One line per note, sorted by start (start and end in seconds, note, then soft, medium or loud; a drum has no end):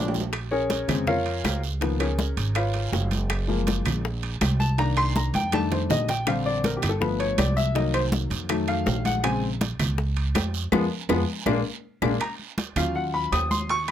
0.00 0.82 A#1 medium
0.00 0.19 F3 medium
0.00 0.19 G#3 medium
0.00 0.19 A#3 medium
0.00 0.15 D4 medium
0.00 0.19 D4 medium
0.08 low timbale loud
0.14 high bongo soft
0.14 high conga medium
0.14 short guiro medium
0.21 low timbale medium
0.33 high bongo medium
0.33 high conga soft
0.33 high timbale medium
0.33 long guiro medium
0.33 claves medium
0.51 1.04 C#4 medium
0.51 1.03 G#4 medium
0.51 1.04 A#4 medium
0.51 1.03 C#5 medium
0.51 high conga soft
0.70 high bongo medium
0.70 high conga medium
0.70 high timbale medium
0.70 low timbale medium
0.70 short guiro medium
0.88 1.40 F2 medium
0.88 1.13 C#3 medium
0.88 1.13 G#3 soft
0.88 1.14 C4 medium
0.88 high conga soft
0.88 low conga medium
0.88 high timbale medium
0.88 short guiro medium
0.88 claves medium
1.07 1.59 F4 medium
1.07 1.60 A#4 medium
1.07 1.60 C#5 medium
1.07 1.59 F5 loud
1.07 high bongo medium
1.07 high conga soft
1.07 low conga medium
1.07 long guiro medium
1.26 high conga soft
1.26 high timbale medium
1.44 2.31 C#2 medium
1.44 high bongo medium
1.44 low bongo medium
1.44 high conga medium
1.44 high timbale medium
1.44 low timbale medium
1.44 short guiro medium
1.44 claves medium
1.64 short guiro medium
1.81 2.06 D#3 medium
1.81 2.06 F3 soft
1.81 2.06 A#3 soft
1.81 2.06 B3 medium
1.81 high bongo medium
1.81 high conga soft
1.81 high timbale medium
1.81 long guiro medium
2.00 2.52 C#4 medium
2.00 2.52 G#4 soft
2.00 2.52 A#4 medium
2.00 2.52 C#5 medium
2.00 high bongo soft
2.00 high conga soft
2.00 high timbale medium
2.00 claves medium
2.19 high bongo medium
2.19 high conga medium
2.19 low timbale medium
2.19 short guiro medium
2.37 2.89 G#1 medium
2.37 high conga soft
2.37 high timbale medium
2.37 short guiro medium
2.55 3.08 F4 medium
2.55 3.08 B4 medium
2.55 3.08 C#5 medium
2.55 3.08 F5 medium
2.55 high bongo medium
2.55 high conga soft
2.55 high timbale medium
2.55 long guiro medium
2.55 claves medium
2.74 high bongo soft
2.74 high conga soft
2.74 high timbale medium
2.92 3.80 F#1 medium
2.92 high bongo medium
2.92 low bongo medium
2.92 high conga soft
2.92 low timbale medium
2.92 short guiro medium
3.11 high bongo soft
3.11 high conga medium
3.11 high timbale medium
3.11 short guiro medium
3.30 high bongo medium
3.30 high conga soft
3.30 high timbale medium
3.30 long guiro medium
3.30 claves medium
3.47 4.01 F3 soft
3.47 4.01 G#3 soft
3.47 4.02 A#3 medium
3.47 high conga soft
3.67 high bongo medium
3.67 high conga medium
3.67 high timbale medium
3.67 low timbale medium
3.67 short guiro medium
3.85 4.37 A#1 medium
3.85 high conga soft
3.85 low conga medium
3.85 high timbale medium
3.85 short guiro medium
3.85 claves medium
4.05 high bongo medium
4.05 high conga soft
4.05 long guiro medium
4.23 high conga soft
4.23 high timbale medium
4.41 5.28 C2 medium
4.41 high bongo medium
4.41 low bongo medium
4.41 high conga medium
4.41 high timbale medium
4.41 low timbale medium
4.41 short guiro medium
4.41 claves medium
4.60 4.78 A5 medium
4.60 high conga medium
4.60 short guiro medium
4.78 5.49 D#3 medium
4.78 5.49 A#3 medium
4.78 5.49 D4 medium
4.78 4.97 A#5 medium
4.78 high bongo medium
4.78 high conga soft
4.78 high timbale medium
4.78 long guiro medium
4.97 5.15 C6 loud
4.97 high bongo soft
4.97 high conga soft
4.97 high timbale medium
4.97 claves medium
5.16 5.34 A#5 medium
5.16 high bongo medium
5.16 high conga medium
5.16 low timbale medium
5.16 short guiro medium
5.34 5.86 F2 loud
5.34 5.53 G5 medium
5.34 high conga medium
5.34 high timbale medium
5.34 short guiro medium
5.52 6.06 D#3 medium
5.52 6.06 G3 medium
5.52 6.06 A3 medium
5.52 6.06 D4 medium
5.52 5.72 A5 medium
5.52 high bongo medium
5.52 high conga medium
5.52 high timbale medium
5.52 long guiro medium
5.52 claves medium
5.72 5.90 C5 medium
5.72 high bongo soft
5.72 low conga medium
5.72 high timbale medium
5.89 6.77 A#1 medium
5.89 6.08 D#5 medium
5.89 high bongo medium
5.89 low bongo medium
5.89 low conga medium
5.89 low timbale medium
5.89 short guiro medium
6.08 6.27 G5 medium
6.08 high bongo soft
6.08 low conga medium
6.08 high timbale medium
6.08 short guiro medium
6.27 6.80 D3 medium
6.27 6.80 G3 soft
6.27 6.81 C4 medium
6.27 6.46 F5 medium
6.27 high bongo medium
6.27 high conga soft
6.27 high timbale loud
6.27 long guiro medium
6.27 claves medium
6.46 6.64 D5 medium
6.46 high conga soft
6.64 6.76 A#4 medium
6.64 high bongo medium
6.64 high conga medium
6.64 high timbale medium
6.64 low timbale medium
6.64 short guiro medium
6.77 6.89 G4 medium
6.82 7.34 G1 medium
6.82 high conga soft
6.82 low conga medium
6.82 high timbale medium
6.82 short guiro medium
6.82 claves medium
6.89 7.01 A4 medium
7.00 7.71 F3 medium
7.00 7.72 A3 soft
7.00 7.72 B3 medium
7.00 7.19 B4 medium
7.00 high bongo medium
7.00 high conga soft
7.00 low conga medium
7.00 long guiro medium
7.20 7.38 C#5 medium
7.20 high conga soft
7.20 high timbale medium
7.38 8.25 C2 medium
7.38 7.57 D5 medium
7.38 high bongo medium
7.38 low bongo medium
7.38 high conga medium
7.38 high timbale medium
7.38 low timbale medium
7.38 short guiro medium
7.38 claves medium
7.57 7.75 E5 medium
7.57 high conga medium
7.57 short guiro medium
7.75 8.46 D#3 medium
7.75 8.46 F#3 soft
7.75 8.46 A#3 medium
7.75 7.94 D#5 medium
7.75 high bongo medium
7.75 high conga soft
7.75 high timbale medium
7.75 long guiro medium
7.94 8.05 C5 medium
7.94 high bongo soft
7.94 high conga soft
7.94 high timbale medium
7.94 claves medium
8.12 high bongo medium
8.12 high conga loud
8.12 low timbale medium
8.12 short guiro medium
8.30 8.83 F2 loud
8.30 high conga soft
8.30 high timbale medium
8.30 short guiro medium
8.49 9.20 D#3 medium
8.49 9.20 F#3 medium
8.49 9.20 A3 medium
8.49 high bongo medium
8.49 high conga soft
8.49 high timbale medium
8.49 long guiro medium
8.49 claves medium
8.68 9.03 F5 medium
8.68 high bongo soft
8.68 high conga soft
8.68 high timbale medium
8.86 9.74 A#1 loud
8.86 high bongo medium
8.86 low bongo medium
8.86 high conga soft
8.86 low timbale medium
8.86 short guiro medium
9.05 9.24 F#5 medium
9.05 high bongo soft
9.05 high conga medium
9.05 high timbale medium
9.05 short guiro medium
9.23 9.48 C#3 soft
9.23 9.49 G#3 medium
9.23 9.49 C4 medium
9.23 9.42 G#5 medium
9.23 high bongo medium
9.23 high timbale loud
9.23 long guiro medium
9.23 claves medium
9.43 high conga soft
9.61 high bongo medium
9.61 high conga loud
9.61 high timbale medium
9.61 low timbale medium
9.61 short guiro medium
9.79 10.31 C#2 loud
9.79 high conga soft
9.79 low conga medium
9.79 high timbale medium
9.79 short guiro medium
9.79 claves medium
9.98 high bongo medium
9.98 high conga soft
9.98 long guiro medium
10.17 high conga soft
10.17 high timbale medium
10.34 10.69 F2 medium
10.34 high bongo medium
10.34 low bongo medium
10.34 high conga medium
10.34 high timbale medium
10.34 low timbale medium
10.34 short guiro medium
10.34 claves medium
10.54 short guiro medium
10.72 10.86 F2 medium
10.72 10.84 F3 medium
10.72 10.84 G#3 loud
10.72 10.84 B3 loud
10.72 high bongo medium
10.72 high conga medium
10.72 high timbale loud
10.72 long guiro loud
10.72 claves loud
11.09 11.23 F2 loud
11.09 11.21 F3 medium
11.09 11.21 G#3 medium
11.09 11.21 B3 medium
11.09 high bongo loud
11.09 high conga medium
11.09 high timbale medium
11.09 long guiro medium
11.09 claves medium
11.46 11.60 A#1 loud
11.46 11.58 G#3 loud
11.46 11.58 A#3 loud
11.46 11.58 D4 loud
11.46 high bongo loud
11.46 high conga loud
11.46 high timbale medium
11.46 claves medium
12.02 12.16 A#1 loud
12.02 12.14 G#3 medium
12.02 12.14 A#3 medium
12.02 12.14 D4 medium
12.02 high bongo medium
12.02 high conga loud
12.02 high timbale medium
12.02 long guiro medium
12.02 claves medium
12.20 12.32 A#5 medium
12.20 high conga soft
12.20 high timbale medium
12.20 long guiro medium
12.20 claves medium
12.39 high conga soft
12.58 high conga medium
12.58 high timbale medium
12.58 low timbale medium
12.58 short guiro medium
12.76 13.28 D#2 loud
12.76 13.66 F#3 medium
12.76 13.66 C#4 soft
12.76 13.66 F4 medium
12.76 12.95 F5 medium
12.76 high conga soft
12.76 low conga medium
12.76 high timbale medium
12.76 short guiro medium
12.76 claves medium
12.95 13.13 F#5 medium
12.95 high conga soft
12.95 long guiro medium
13.14 13.32 B5 medium
13.14 high conga soft
13.32 13.91 D#2 medium
13.32 13.50 D#6 medium
13.32 high conga soft
13.32 high timbale medium
13.32 low timbale medium
13.32 short guiro medium
13.32 claves medium
13.51 13.69 C6 medium
13.51 high conga medium
13.51 short guiro medium
13.69 13.88 C#6 loud
13.69 high conga soft
13.69 high timbale medium
13.69 long guiro medium
13.88 high conga soft
13.88 high timbale medium